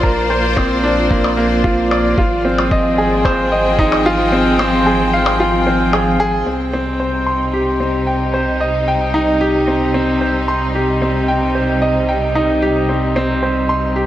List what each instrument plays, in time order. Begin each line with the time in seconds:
Already playing: sub bass A#1, grand piano A#3 D4 F4 C5 D5, string section A#3 F4 C5 D5
0.03 grand piano A#4, kick
0.30 grand piano C5
0.57 grand piano C4, kick, percussion blips
0.83 grand piano D4
1.10 grand piano A#3, kick
1.24 percussion blips
1.37 grand piano A#3
1.64 grand piano F4, kick
1.91 grand piano D5, percussion blips
2.18 sub bass G#1, string section F3, grand piano F4, kick
2.37 string section G#4
2.43 string section C4, grand piano C4
2.58 percussion blips
2.66 string section G5
2.71 grand piano D#5, kick
2.98 grand piano G#4
3.25 grand piano C5, kick, percussion blips
3.52 grand piano D#5
3.79 grand piano D#4, kick
3.92 percussion blips
4.06 grand piano F4
4.32 grand piano C4
4.59 grand piano C4, percussion blips
4.86 grand piano G#4
5.13 grand piano F5
5.26 percussion blips
5.40 grand piano F4
5.67 grand piano C4
5.93 grand piano G#4, percussion blips
6.20 grand piano G#4
6.46 sub bass C2, string section C3, grand piano C4
6.69 string section G3
6.73 grand piano C4, string section D#4
7.00 grand piano C5
7.26 grand piano C6
7.53 grand piano G4
7.80 grand piano C4
8.07 grand piano G5
8.34 grand piano C5
8.61 grand piano D#5
8.88 grand piano G5
9.14 grand piano D#4
9.41 grand piano G4
9.68 grand piano C4
9.94 grand piano C4
10.21 grand piano C5
10.48 grand piano C6
10.75 grand piano G4
11.02 grand piano C4
11.28 grand piano G5
11.55 grand piano C5
11.82 grand piano D#5
12.09 grand piano G5
12.35 grand piano D#4
12.62 grand piano G4
12.89 grand piano C4
13.16 grand piano C4
13.43 grand piano C5
13.69 grand piano C6
13.96 grand piano G4